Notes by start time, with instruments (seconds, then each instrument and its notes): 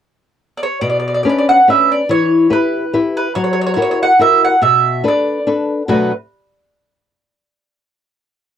0.57 mandolin D5
0.63 mandolin C#5
0.81 nylon-string guitar B2, mandolin D5
0.90 mandolin D5
1.00 mandolin D5
1.08 mandolin D5
1.14 mandolin D5
1.23 nylon-string guitar C#4 D4 B4, mandolin D5
1.29 mandolin D5
1.38 mandolin D5
1.49 mandolin F#5
1.68 nylon-string guitar C#4 D4 B4, mandolin E5
1.92 mandolin D5
2.09 nylon-string guitar E3, mandolin C#5
2.50 nylon-string guitar E4 G4 B4, mandolin B4
2.93 nylon-string guitar E4 G4 B4
3.17 mandolin B4
3.35 nylon-string guitar F#3, mandolin C#5
3.44 mandolin C#5
3.53 mandolin C#5
3.61 mandolin C#5
3.67 mandolin C#5
3.74 nylon-string guitar E4 F#4 A#4, mandolin C#5
3.82 mandolin C#5
3.91 mandolin C#5
4.03 mandolin F#5
4.19 nylon-string guitar E4 F#4 A#4, mandolin E5
4.45 mandolin F#5
4.62 nylon-string guitar B2, mandolin E5
5.04 nylon-string guitar D4 A4 B4
5.08 mandolin D5
5.47 nylon-string guitar D4 A4 B4
5.88 nylon-string guitar B2 F#3 A3 D4 F#4, mandolin B4